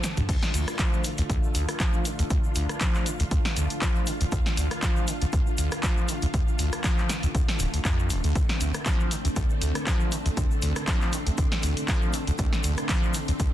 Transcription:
Already playing: D3 G3 A4
0.04 D3, snare, open hi-hat, shaker
0.17 D2, closed hi-hat, mid tom, shaker
0.29 D2 D3 A3 F4, kick, closed hi-hat, crash, shaker
0.42 snare, shaker
0.54 D2, open hi-hat, shaker
0.68 cross-stick, closed hi-hat, shaker
0.79 F3, kick, clap, closed hi-hat, shaker
0.93 shaker
1.04 D3, open hi-hat, shaker
1.18 D2, closed hi-hat, shaker
1.30 D2, kick, closed hi-hat, shaker
1.43 shaker
1.55 D2, open hi-hat, shaker
1.69 cross-stick, closed hi-hat, shaker
1.80 F3, kick, clap, closed hi-hat, shaker
1.93 shaker
2.05 D3, open hi-hat, shaker
2.19 D2, closed hi-hat, shaker
2.30 D2, kick, closed hi-hat, shaker
2.44 shaker
2.55 D2, open hi-hat, shaker
2.69 cross-stick, closed hi-hat, shaker
2.81 F3, kick, clap, closed hi-hat, shaker
2.95 clap, shaker
3.06 D3, open hi-hat, shaker
3.20 D2, closed hi-hat, shaker
3.31 D2, kick, closed hi-hat, shaker
3.45 snare, shaker
3.57 D2, open hi-hat, shaker
3.70 closed hi-hat, shaker
3.82 F3, kick, clap, closed hi-hat, shaker
3.96 shaker
4.07 D3, open hi-hat, shaker
4.21 D2, closed hi-hat, shaker
4.32 D2, kick, closed hi-hat, shaker
4.46 snare, shaker
4.57 D2, open hi-hat, shaker
4.71 cross-stick, closed hi-hat, shaker
4.82 F3, kick, clap, closed hi-hat, shaker
4.96 shaker
5.08 D3, open hi-hat, shaker
5.22 D2, closed hi-hat, shaker
5.33 D2, kick, closed hi-hat, shaker
5.47 shaker
5.58 D2, open hi-hat, shaker
5.71 cross-stick, closed hi-hat, shaker
5.83 F3, kick, clap, closed hi-hat, shaker
5.97 shaker
6.09 D3, open hi-hat, shaker
6.22 D2, closed hi-hat, shaker
6.34 D2, kick, closed hi-hat, shaker
6.48 shaker
6.59 D2, open hi-hat, shaker
6.72 cross-stick, closed hi-hat, shaker
6.84 F3, kick, clap, closed hi-hat, shaker
6.98 clap, shaker
7.09 D3, snare, open hi-hat, shaker
7.23 D2, closed hi-hat, shaker
7.35 D2, kick, closed hi-hat, shaker
7.48 snare, shaker
7.59 D1, open hi-hat, shaker
7.74 D2, closed hi-hat, shaker
7.85 F2, kick, clap, closed hi-hat, shaker
7.99 shaker
8.10 D1, open hi-hat, shaker
8.24 D2, closed hi-hat, shaker
8.35 C4, kick, closed hi-hat, shaker
8.49 snare, shaker
8.61 D2, open hi-hat, shaker
8.74 cross-stick, closed hi-hat, shaker
8.86 F3, kick, clap, closed hi-hat, shaker
9.00 shaker
9.11 D3, open hi-hat, shaker
9.25 D2, closed hi-hat, shaker
9.36 D2, kick, closed hi-hat, shaker
9.50 shaker
9.62 D2, open hi-hat, shaker
9.75 cross-stick, closed hi-hat, shaker
9.87 F3, kick, clap, closed hi-hat, shaker
10.00 shaker
10.12 D3, open hi-hat, shaker
10.26 D2, closed hi-hat, shaker
10.37 D2, kick, closed hi-hat, shaker
10.51 shaker
10.62 D2, open hi-hat, shaker
10.76 cross-stick, closed hi-hat, shaker
10.87 F3, kick, clap, closed hi-hat, shaker
11.01 clap, shaker
11.13 D3, open hi-hat, shaker
11.27 D2, closed hi-hat, shaker
11.38 D2, kick, closed hi-hat, shaker
11.52 snare, shaker
11.63 D2, open hi-hat, shaker
11.77 closed hi-hat, shaker
11.88 F3, kick, clap, closed hi-hat, shaker
12.02 shaker
12.13 D3, open hi-hat, shaker
12.27 D2, closed hi-hat, shaker
12.38 D2, kick, closed hi-hat, shaker
12.53 snare, shaker
12.64 D2, open hi-hat, shaker
12.77 cross-stick, closed hi-hat, shaker
12.89 F3, kick, clap, closed hi-hat, shaker
13.03 shaker
13.14 D3, open hi-hat, shaker
13.28 D2, closed hi-hat, shaker
13.40 D2, kick, closed hi-hat, shaker

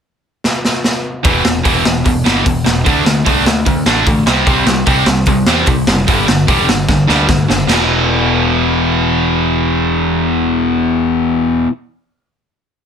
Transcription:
0.44 snare
0.65 snare
0.84 snare
1.23 E1 E2 B2 E3, kick, open hi-hat
1.44 E1 E2 B2, snare
1.64 E1 E2 B2 E3, kick, open hi-hat
1.85 E1 E2 B2, snare
2.05 E1 E2 B2, kick, open hi-hat
2.25 G1 E2 B2 E3, snare
2.45 E1 E2 B2, kick, open hi-hat
2.65 E1 E2 B2, snare
2.85 D2 D3 A3 D4, kick, open hi-hat
3.05 D2 D3 A3, snare
3.26 C2 D3 A3 D4, kick, open hi-hat
3.45 D2 D3 A3, snare
3.66 D2 D3 A3, kick, open hi-hat
3.86 A1 D3 A3 D4, snare
4.07 A1 D3 A3, kick, open hi-hat
4.26 C2 C3 G3 C4, snare
4.46 C2 C3 G3 C4, kick, open hi-hat
4.66 C2 C3 G3, snare
4.86 C2 C3 G3 C4, kick, open hi-hat
5.06 C2 C3 G3, snare
5.26 C2 C3 G3, kick, open hi-hat
5.46 E2 C3 G3 C4, snare
5.66 C2 C3 G3, kick, open hi-hat
5.87 F#1 C3 G3, snare
6.07 G1 G2 D3 G3, kick, open hi-hat
6.27 G1 G2 D3, snare
6.47 E1 G2 D3 G3, kick, open hi-hat
6.68 G1 G2 D3, snare
6.88 G1 G2 D3, kick, snare
7.08 D2 G2 D3 G3, snare
7.28 D2 G2 D3, kick, snare
7.49 F#1 G2 D3, snare
7.68 E1 E2 B2, snare, crash
7.72 E3

